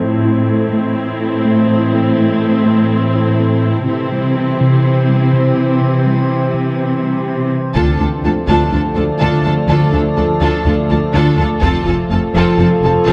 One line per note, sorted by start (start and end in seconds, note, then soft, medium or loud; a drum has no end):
0.00 3.85 A2 medium
0.00 3.87 E3 medium
0.00 0.15 A3 medium
0.00 3.84 C4 medium
0.00 3.84 E4 medium
0.00 3.84 A4 medium
0.00 3.84 C5 medium
0.25 0.40 E4 soft
0.49 0.64 A4 soft
0.73 0.88 A3 medium
1.22 1.36 E4 medium
1.45 1.60 A3 medium
1.94 2.09 A3 medium
2.17 2.32 E4 medium
2.42 2.57 A4 soft
2.66 2.81 A3 medium
3.15 3.30 E4 soft
3.39 3.54 A3 medium
3.88 4.03 C3 medium
3.88 7.52 C3 medium
3.88 7.72 E3 medium
3.88 7.51 C4 soft
3.88 7.72 C4 medium
3.88 7.51 E4 soft
3.88 7.75 G4 medium
3.88 7.72 C5 medium
4.12 4.27 G3 medium
4.36 4.51 C4 soft
4.61 4.75 C3 medium
5.09 5.23 G3 soft
5.33 5.48 C3 medium
5.81 5.96 C3 medium
6.06 6.20 G3 soft
6.30 6.45 C4 soft
6.54 6.69 C3 medium
7.02 7.17 G3 soft
7.27 7.41 C3 medium
7.75 7.84 D2 medium
7.75 7.84 D2 soft
7.75 7.90 D3 medium
7.75 11.59 F3 medium
7.75 11.58 A3 medium
7.75 7.98 D4 soft
7.75 7.98 F4 medium
7.75 11.58 A4 medium
7.75 7.98 A4 soft
7.75 11.59 A4 medium
7.75 11.59 D5 medium
7.75 7.98 A5 medium
7.75 taiko soft
7.99 8.08 D2 soft
7.99 8.09 D2 soft
7.99 8.08 D4 soft
7.99 8.14 D4 soft
7.99 8.07 F4 soft
7.99 8.08 A4 soft
7.99 8.07 A5 soft
8.24 8.32 D2 soft
8.24 8.33 D2 soft
8.24 8.38 F3 soft
8.24 8.32 D4 soft
8.24 8.32 F4 soft
8.24 8.33 A4 soft
8.24 8.33 A5 soft
8.48 8.56 D2 soft
8.48 8.57 D2 soft
8.48 8.63 D3 medium
8.48 8.70 D4 soft
8.48 8.71 F4 soft
8.48 8.71 A4 soft
8.48 8.71 A5 soft
8.48 taiko soft
8.72 8.80 D2 soft
8.72 8.81 D2 soft
8.72 8.80 D4 soft
8.72 8.87 D4 medium
8.72 8.80 F4 soft
8.72 8.80 A4 soft
8.72 8.81 A5 soft
8.96 9.05 D2 soft
8.96 9.11 A3 soft
8.96 9.04 D4 soft
8.96 9.04 F4 soft
8.96 9.04 A4 soft
8.96 9.04 A5 soft
9.20 9.29 D2 soft
9.20 9.29 D2 medium
9.20 9.35 D3 medium
9.20 9.43 D4 soft
9.20 9.42 F4 soft
9.20 9.43 A4 medium
9.20 9.43 A5 soft
9.44 9.53 D2 soft
9.44 9.59 F3 medium
9.44 9.52 D4 soft
9.44 9.52 F4 soft
9.44 9.53 A4 soft
9.44 9.52 A5 soft
9.68 9.77 D2 medium
9.68 9.78 D2 medium
9.68 9.83 D3 medium
9.68 9.91 D4 soft
9.68 9.91 F4 medium
9.68 9.91 A4 medium
9.68 9.91 A5 medium
9.92 10.01 D2 soft
9.92 10.02 D2 soft
9.92 10.07 D4 medium
9.92 10.01 D4 soft
9.92 10.01 F4 soft
9.92 10.02 A4 soft
9.92 10.01 A5 soft
10.17 10.25 D2 soft
10.17 10.26 D2 soft
10.17 10.32 F3 soft
10.17 10.25 D4 soft
10.17 10.25 F4 soft
10.17 10.26 A4 soft
10.17 10.25 A5 soft
10.41 10.49 D2 medium
10.41 10.50 D2 medium
10.41 10.56 D3 medium
10.41 10.64 D4 soft
10.41 10.64 F4 medium
10.41 10.64 A4 medium
10.41 10.64 A5 medium
10.65 10.74 D2 soft
10.65 10.75 D2 soft
10.65 10.73 D4 soft
10.65 10.80 D4 medium
10.65 10.73 F4 soft
10.65 10.75 A4 soft
10.65 10.74 A5 soft
10.89 10.98 D2 soft
10.89 10.99 D2 soft
10.89 11.05 A3 soft
10.89 10.97 D4 soft
10.89 10.97 F4 soft
10.89 10.99 A4 soft
10.89 10.99 A5 soft
11.14 11.22 D2 medium
11.14 11.23 D2 medium
11.14 11.28 D3 medium
11.14 11.37 D4 medium
11.14 11.36 F4 medium
11.14 11.37 A4 medium
11.14 11.37 A5 medium
11.38 11.46 D2 soft
11.38 11.47 D2 soft
11.38 11.52 F3 medium
11.38 11.46 D4 soft
11.38 11.46 F4 soft
11.38 11.47 A4 medium
11.38 11.47 A5 medium
11.61 11.70 F1 medium
11.61 11.72 F2 medium
11.61 11.76 F3 medium
11.61 13.13 F3 medium
11.61 11.85 C4 medium
11.61 13.13 C4 medium
11.61 11.84 F4 medium
11.61 11.85 A4 medium
11.61 13.13 A4 medium
11.61 13.13 C5 medium
11.61 11.85 A5 medium
11.61 taiko medium
11.86 11.95 F1 medium
11.86 11.96 F2 soft
11.86 11.94 C4 soft
11.86 12.00 F4 medium
11.86 11.94 F4 soft
11.86 11.95 A4 soft
11.86 11.95 A5 soft
12.10 12.19 F1 soft
12.10 12.19 F2 soft
12.10 12.25 A3 medium
12.10 12.19 C4 soft
12.10 12.18 F4 soft
12.10 12.19 A4 soft
12.10 12.19 A5 medium
12.34 12.43 F1 medium
12.34 12.44 F2 medium
12.34 12.49 F3 medium
12.34 12.57 C4 medium
12.34 12.57 F4 medium
12.34 12.58 A4 medium
12.34 12.58 A5 medium
12.58 12.67 F1 soft
12.58 12.68 F2 soft
12.58 12.67 C4 medium
12.58 12.73 F4 medium
12.58 12.67 F4 soft
12.58 12.68 A4 soft
12.58 12.67 A5 medium
12.82 12.92 F1 soft
12.82 12.93 F2 soft
12.82 12.97 C4 medium
12.82 12.91 C4 soft
12.82 12.91 F4 soft
12.82 12.92 A4 soft
12.82 12.92 A5 soft
13.06 13.13 F1 medium
13.06 13.13 F2 medium
13.06 13.13 F3 medium
13.06 13.13 C4 medium
13.06 13.13 F4 medium
13.06 13.13 A4 medium
13.06 13.13 A5 medium